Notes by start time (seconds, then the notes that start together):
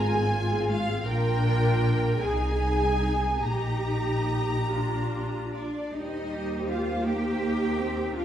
Already playing: G#1 G#3 F4 G#5
0.14 C4 G#4
0.32 G#3 F4
0.51 C4 G#4
0.69 G#3 F4 F5
0.87 C4 G#4
1.06 A#1 D4 F4 A#4 G5
2.20 C2 D#4 G#4 G#5
3.42 A#1 D#4 G4 A#5
4.70 D4 F4
5.52 D4 D5
5.91 D#2 G3 D#4 G4 C5 D#5
6.66 F4 F5
7.03 A#3 D#4 G4 G5
7.41 A#3
7.79 C4
8.14 D2 D4 F4 A#4 F5